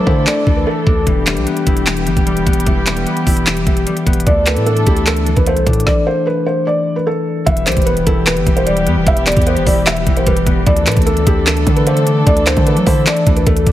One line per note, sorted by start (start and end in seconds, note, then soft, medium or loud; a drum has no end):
0.00 0.45 E3 medium
0.00 5.83 E3 medium
0.00 0.66 A3 medium
0.00 1.04 A3 medium
0.00 0.77 B3 medium
0.00 0.86 D4 medium
0.00 1.04 D4 medium
0.00 1.04 A4 medium
0.07 0.26 D3 loud
0.07 1.66 E4 medium
0.07 0.25 C5 medium
0.07 kick medium
0.27 0.55 D5 medium
0.27 clap loud
0.47 0.66 D2 loud
0.47 1.05 E3 medium
0.47 kick medium
0.56 0.66 B4 medium
0.66 3.99 A3 medium
0.66 1.04 A4 medium
0.87 1.06 D2 loud
0.87 3.67 D4 medium
0.87 kick loud
1.07 1.38 E1 loud
1.07 2.05 E3 loud
1.07 4.24 G3 medium
1.07 4.24 B3 medium
1.07 4.24 G4 medium
1.07 kick loud
1.07 closed hi-hat medium
1.27 2.26 G3 medium
1.27 clap medium
1.27 closed hi-hat medium
1.37 1.46 B1 medium
1.37 closed hi-hat medium
1.47 2.46 B3 medium
1.47 closed hi-hat medium
1.57 closed hi-hat medium
1.67 2.08 E1 loud
1.67 3.26 E4 medium
1.67 kick medium
1.67 closed hi-hat medium
1.77 closed hi-hat medium
1.87 clap loud
1.87 closed hi-hat medium
1.97 closed hi-hat medium
2.07 2.16 G1 loud
2.07 2.66 E3 medium
2.07 closed hi-hat medium
2.17 2.45 E1 loud
2.17 kick medium
2.17 closed hi-hat medium
2.27 2.86 G3 medium
2.27 closed hi-hat medium
2.37 closed hi-hat medium
2.47 2.66 E1 loud
2.47 3.06 B3 medium
2.47 kick loud
2.47 closed hi-hat medium
2.53 closed hi-hat medium
2.60 closed hi-hat medium
2.67 3.05 E1 loud
2.67 3.65 E3 medium
2.67 kick loud
2.67 closed hi-hat medium
2.87 3.85 G3 medium
2.87 clap loud
2.87 closed hi-hat medium
2.97 closed hi-hat medium
3.07 4.06 B3 medium
3.07 closed hi-hat medium
3.17 closed hi-hat medium
3.27 3.65 E1 loud
3.27 4.86 E4 medium
3.27 kick medium
3.27 open hi-hat medium
3.37 closed hi-hat medium
3.47 clap loud
3.47 closed hi-hat medium
3.57 closed hi-hat medium
3.67 3.86 E1 loud
3.67 4.26 E3 medium
3.67 kick medium
3.67 closed hi-hat medium
3.77 closed hi-hat soft
3.87 4.32 G3 medium
3.87 closed hi-hat medium
3.97 closed hi-hat medium
4.07 4.26 E1 loud
4.07 7.17 B3 medium
4.07 kick loud
4.07 closed hi-hat medium
4.13 closed hi-hat medium
4.20 closed hi-hat medium
4.26 4.58 D2 loud
4.26 5.26 E3 loud
4.26 5.85 A3 medium
4.26 5.85 D4 medium
4.26 5.85 A4 loud
4.26 4.45 D5 medium
4.26 kick loud
4.26 closed hi-hat medium
4.46 5.46 A3 medium
4.46 4.65 B4 medium
4.46 clap medium
4.46 closed hi-hat medium
4.57 4.85 A2 loud
4.57 closed hi-hat medium
4.66 5.66 D4 medium
4.66 4.85 A4 medium
4.66 closed hi-hat medium
4.77 closed hi-hat medium
4.87 5.35 D2 loud
4.87 7.48 E4 loud
4.87 5.05 G4 medium
4.87 kick medium
4.87 closed hi-hat medium
4.97 closed hi-hat medium
5.06 5.35 A4 medium
5.06 clap loud
5.06 closed hi-hat medium
5.17 closed hi-hat medium
5.27 7.45 E3 medium
5.27 closed hi-hat medium
5.36 5.58 D2 loud
5.36 5.46 B4 medium
5.36 kick medium
5.36 closed hi-hat medium
5.47 8.80 A3 medium
5.47 5.65 C5 medium
5.47 closed hi-hat medium
5.57 5.66 C2 loud
5.57 closed hi-hat medium
5.67 5.86 A2 loud
5.67 8.47 D4 medium
5.67 kick loud
5.67 closed hi-hat medium
5.73 closed hi-hat medium
5.80 closed hi-hat medium
5.86 6.05 D5 medium
5.86 kick loud
5.86 snare medium
6.07 6.25 C5 medium
6.27 6.45 B4 medium
6.46 6.65 C5 medium
6.67 6.95 D5 medium
6.96 7.06 B4 medium
7.07 7.44 A4 medium
7.46 7.68 E1 loud
7.46 8.45 E3 loud
7.46 13.72 E3 medium
7.46 10.64 G3 medium
7.46 10.64 B3 medium
7.46 10.64 G4 loud
7.46 7.65 E5 loud
7.46 kick loud
7.46 closed hi-hat medium
7.57 closed hi-hat medium
7.66 7.76 B1 medium
7.66 8.65 G3 medium
7.66 7.85 C5 medium
7.66 clap loud
7.66 closed hi-hat medium
7.72 closed hi-hat medium
7.77 8.05 E1 loud
7.77 kick loud
7.77 closed hi-hat medium
7.82 8.05 B4 medium
7.82 closed hi-hat soft
7.87 8.86 B3 medium
7.87 closed hi-hat medium
7.97 closed hi-hat medium
8.07 8.38 E1 loud
8.07 9.66 E4 medium
8.07 8.25 A4 medium
8.07 kick medium
8.07 closed hi-hat medium
8.27 8.55 B4 medium
8.27 clap loud
8.27 closed hi-hat medium
8.37 8.46 G1 loud
8.37 closed hi-hat medium
8.47 8.88 E1 loud
8.47 9.05 E3 medium
8.47 kick loud
8.47 closed hi-hat medium
8.56 8.66 C5 medium
8.56 closed hi-hat medium
8.66 9.26 G3 medium
8.66 8.85 D5 medium
8.66 closed hi-hat medium
8.77 closed hi-hat medium
8.87 8.98 E2 loud
8.87 9.46 B3 medium
8.87 closed hi-hat medium
8.97 9.06 E1 loud
9.07 9.35 E1 loud
9.07 10.05 E3 medium
9.07 9.26 E5 medium
9.07 kick loud
9.07 closed hi-hat medium
9.17 closed hi-hat medium
9.27 10.25 G3 medium
9.27 9.45 D5 medium
9.27 clap loud
9.27 closed hi-hat medium
9.32 closed hi-hat medium
9.37 9.58 E2 loud
9.37 kick loud
9.37 closed hi-hat medium
9.42 closed hi-hat soft
9.47 10.46 B3 medium
9.47 9.65 C5 medium
9.47 closed hi-hat medium
9.57 9.66 G1 loud
9.57 closed hi-hat medium
9.66 10.05 E1 loud
9.66 11.26 E4 medium
9.66 9.85 D5 medium
9.66 kick medium
9.66 open hi-hat medium
9.87 10.15 E5 medium
9.87 clap loud
9.87 closed hi-hat medium
9.97 closed hi-hat medium
10.07 10.26 E1 loud
10.07 10.65 E3 medium
10.07 kick loud
10.07 closed hi-hat medium
10.17 10.26 C5 medium
10.17 closed hi-hat medium
10.27 10.46 E1 loud
10.27 10.72 G3 loud
10.27 10.45 B4 medium
10.27 kick loud
10.27 closed hi-hat medium
10.37 closed hi-hat medium
10.47 10.66 E1 loud
10.47 13.57 B3 medium
10.47 kick loud
10.47 closed hi-hat medium
10.67 10.88 D2 loud
10.67 11.65 E3 loud
10.67 13.72 A3 medium
10.67 13.72 D4 medium
10.67 13.72 A4 loud
10.67 10.85 D5 medium
10.67 kick loud
10.67 closed hi-hat medium
10.77 closed hi-hat medium
10.86 10.96 A2 loud
10.86 11.86 A3 medium
10.86 11.05 B4 medium
10.86 clap loud
10.86 closed hi-hat medium
10.92 closed hi-hat medium
10.97 11.25 D2 loud
10.97 kick loud
10.97 closed hi-hat medium
11.02 closed hi-hat soft
11.06 12.06 D4 medium
11.06 11.25 A4 medium
11.06 closed hi-hat medium
11.17 closed hi-hat medium
11.27 11.65 D2 loud
11.27 12.86 E4 loud
11.27 11.45 G4 medium
11.27 kick medium
11.27 closed hi-hat medium
11.47 11.75 A4 medium
11.47 clap loud
11.47 closed hi-hat medium
11.57 closed hi-hat medium
11.67 12.24 D3 loud
11.67 12.25 E3 medium
11.67 kick loud
11.67 closed hi-hat medium
11.76 11.86 B4 medium
11.76 closed hi-hat medium
11.87 12.46 A3 medium
11.87 12.05 C5 medium
11.87 closed hi-hat medium
11.97 closed hi-hat medium
12.07 12.66 D4 medium
12.07 closed hi-hat medium
12.26 12.55 D2 loud
12.26 13.25 E3 loud
12.26 12.45 D5 medium
12.26 kick loud
12.26 closed hi-hat medium
12.37 closed hi-hat medium
12.47 13.46 A3 medium
12.47 12.65 C5 medium
12.47 clap loud
12.47 closed hi-hat medium
12.57 12.78 D3 loud
12.57 kick loud
12.57 closed hi-hat soft
12.67 13.66 D4 medium
12.67 12.85 B4 medium
12.67 closed hi-hat medium
12.77 12.86 F#3 loud
12.77 closed hi-hat medium
12.86 13.06 D3 loud
12.86 13.72 E4 loud
12.86 13.05 C5 medium
12.86 kick medium
12.86 open hi-hat medium
13.07 13.35 D5 medium
13.07 clap loud
13.07 closed hi-hat medium
13.17 closed hi-hat medium
13.27 13.46 D2 loud
13.27 13.72 E3 medium
13.27 kick loud
13.27 closed hi-hat medium
13.36 13.46 B4 medium
13.36 closed hi-hat medium
13.47 13.66 D2 loud
13.47 13.72 A3 medium
13.47 13.72 A4 medium
13.47 kick loud
13.47 closed hi-hat medium
13.57 closed hi-hat medium
13.67 13.72 D2 loud
13.67 13.72 D4 medium
13.67 kick loud
13.67 closed hi-hat medium